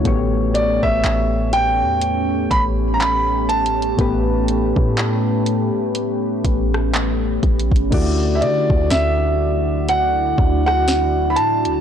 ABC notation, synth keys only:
X:1
M:4/4
L:1/8
Q:"Swing 16ths" 1/4=61
K:D
V:1 name="Synth keys"
[A,,A,B,Gc]8 | [A,,A,B,GB]8 | [D,A,EFd]8 |]